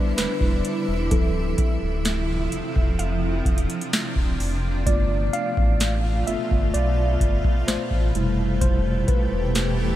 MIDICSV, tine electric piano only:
0, 0, Header, 1, 2, 480
1, 0, Start_track
1, 0, Tempo, 937500
1, 572, Time_signature, 4, 2, 24, 8
1, 5099, End_track
2, 0, Start_track
2, 0, Title_t, "Tine electric piano"
2, 0, Program_c, 0, 4
2, 0, Control_c, 0, 64, 127
2, 0, Note_on_c, 0, 55, 52
2, 0, Note_on_c, 0, 59, 51
2, 0, Note_on_c, 0, 62, 61
2, 0, Note_on_c, 0, 71, 97
2, 0, Note_on_c, 0, 72, 71
2, 0, Note_on_c, 0, 74, 102
2, 70, Note_off_c, 0, 71, 0
2, 74, Note_off_c, 0, 55, 0
2, 75, Note_off_c, 0, 59, 0
2, 76, Note_off_c, 0, 62, 0
2, 89, Note_on_c, 0, 71, 95
2, 570, Note_on_c, 0, 69, 82
2, 573, Note_on_c, 0, 53, 57
2, 576, Note_on_c, 0, 60, 55
2, 579, Control_c, 0, 64, 0
2, 580, Note_on_c, 0, 64, 64
2, 581, Note_off_c, 0, 74, 0
2, 584, Note_off_c, 0, 72, 0
2, 585, Note_off_c, 0, 71, 0
2, 682, Control_c, 0, 64, 127
2, 1270, Note_off_c, 0, 69, 0
2, 1272, Note_off_c, 0, 53, 0
2, 1273, Note_off_c, 0, 60, 0
2, 1275, Note_off_c, 0, 64, 0
2, 2491, Note_on_c, 0, 74, 101
2, 2494, Note_on_c, 0, 57, 57
2, 2498, Control_c, 0, 64, 0
2, 2498, Note_on_c, 0, 59, 53
2, 2501, Note_on_c, 0, 65, 64
2, 2600, Control_c, 0, 64, 127
2, 2730, Note_on_c, 0, 77, 112
2, 2738, Note_off_c, 0, 74, 0
2, 2812, Note_off_c, 0, 57, 0
2, 2814, Note_off_c, 0, 59, 0
2, 2816, Note_off_c, 0, 65, 0
2, 3210, Note_on_c, 0, 76, 98
2, 3215, Note_on_c, 0, 57, 54
2, 3216, Note_on_c, 0, 59, 46
2, 3218, Note_on_c, 0, 65, 57
2, 3226, Note_off_c, 0, 77, 0
2, 3318, Note_off_c, 0, 76, 0
2, 3433, Note_off_c, 0, 57, 0
2, 3433, Note_off_c, 0, 59, 0
2, 3435, Note_off_c, 0, 65, 0
2, 3449, Note_on_c, 0, 74, 96
2, 3930, Note_on_c, 0, 72, 86
2, 3945, Note_off_c, 0, 74, 0
2, 4174, Note_on_c, 0, 55, 61
2, 4176, Note_on_c, 0, 57, 54
2, 4177, Note_on_c, 0, 47, 58
2, 4179, Control_c, 0, 64, 0
2, 4180, Note_on_c, 0, 64, 69
2, 4281, Control_c, 0, 64, 127
2, 4403, Note_off_c, 0, 72, 0
2, 4409, Note_on_c, 0, 72, 93
2, 4492, Note_off_c, 0, 55, 0
2, 4493, Note_off_c, 0, 57, 0
2, 4494, Note_off_c, 0, 47, 0
2, 4495, Note_off_c, 0, 64, 0
2, 4634, Note_off_c, 0, 72, 0
2, 4649, Note_on_c, 0, 71, 84
2, 5099, Note_off_c, 0, 71, 0
2, 5099, End_track
0, 0, End_of_file